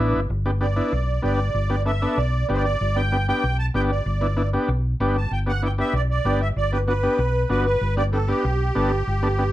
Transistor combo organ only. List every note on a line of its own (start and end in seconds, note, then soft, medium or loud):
0.00 0.20 B3 medium
0.00 0.20 D4 medium
0.00 0.21 E4 loud
0.46 0.51 B3 medium
0.46 0.51 D4 medium
0.46 0.51 G4 medium
0.61 0.66 B3 medium
0.61 0.66 D4 medium
0.61 0.67 G4 medium
0.76 0.93 B3 medium
0.76 0.93 D4 medium
0.76 0.93 E4 medium
1.22 1.40 B3 medium
1.22 1.40 D4 medium
1.22 1.40 G4 medium
1.70 1.76 B3 medium
1.70 1.76 D4 medium
1.70 1.76 G4 medium
1.86 1.91 B3 medium
1.86 1.92 D4 medium
1.86 1.92 A4 medium
2.02 2.18 B3 medium
2.02 2.18 D4 medium
2.02 2.19 A4 medium
2.49 2.65 B3 medium
2.49 2.66 D4 medium
2.49 2.66 G4 medium
2.96 3.02 B3 medium
2.96 3.02 D4 medium
2.96 3.02 G4 medium
3.12 3.17 B3 medium
3.12 3.18 D4 medium
3.12 3.18 G4 medium
3.29 3.44 B3 medium
3.29 3.45 D4 medium
3.29 3.45 G4 medium
3.74 3.91 B3 medium
3.74 3.91 D4 medium
3.74 3.91 G4 medium
4.21 4.27 B3 medium
4.21 4.27 D4 medium
4.21 4.27 E4 medium
4.37 4.42 B3 medium
4.37 4.43 D4 medium
4.37 4.43 E4 medium
4.53 4.69 B3 medium
4.53 4.70 D4 medium
4.53 4.70 G4 medium
5.00 5.17 B3 medium
5.00 5.17 D4 medium
5.00 5.17 G4 medium
5.46 5.52 B3 medium
5.46 5.52 D4 medium
5.46 5.52 G4 medium
5.63 5.68 B3 medium
5.63 5.68 D4 medium
5.63 5.68 E4 medium
5.78 5.95 B3 medium
5.78 5.95 D4 medium
5.78 5.95 G4 medium
6.25 6.42 B3 medium
6.25 6.42 D4 medium
6.25 6.42 G4 medium
6.72 6.78 B3 medium
6.72 6.78 D4 medium
6.72 6.78 G4 medium
6.88 6.93 B3 medium
6.88 6.93 D4 medium
6.88 6.93 F#4 medium
7.03 7.20 B3 medium
7.03 7.20 D4 medium
7.03 7.20 G4 medium
7.49 7.66 B3 medium
7.49 7.66 D4 medium
7.49 7.67 F#4 medium
7.97 8.03 B3 medium
7.97 8.03 D4 medium
7.97 8.03 G4 medium
8.13 8.18 B3 medium
8.13 8.19 D4 medium
8.13 8.19 G4 medium
8.28 8.45 B3 medium
8.28 8.45 D4 medium
8.28 8.45 G4 medium
8.75 8.92 B3 medium
8.75 8.92 D4 medium
8.75 8.92 A4 medium
9.23 9.28 B3 medium
9.23 9.28 D4 medium
9.23 9.28 A4 medium
9.38 9.44 B3 medium
9.38 9.44 D4 medium
9.38 9.44 G4 medium